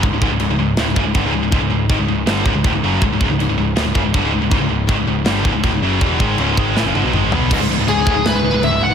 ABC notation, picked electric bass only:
X:1
M:4/4
L:1/16
Q:1/4=161
K:C#m
V:1 name="Picked electric bass" clef=bass
C,,, C,,, C,,, C,,, C,,, C,,, C,,,2 =D,,, C,,, F,,, C,,, =G,,, C,,, C,,, C,,, | C,,, C,,, C,,,2 G,,, C,,, C,,,2 =G,,,2 C,,, C,,, =D,,, C,,, F,,,2 | C,,, C,,, C,,, C,,, C,,, C,,, C,,,2 =D,,, C,,, F,,, C,,, =G,,, C,,, C,,, C,,, | C,,, C,,, C,,,2 G,,, C,,, C,,,2 =G,,,2 C,,, C,,, =D,,, C,,, F,,,2 |
E,,,2 G,,,2 C,,,2 G,,,2 A,,, F,,, =G,,, B,,, ^G,,,2 B,,,2 | C,,, C,,, C,,, C,,, C,,, C,,, =D,,, C,,, C,,, C,,, C,,, C,,, C,,, C,,, C,,, C,,, |]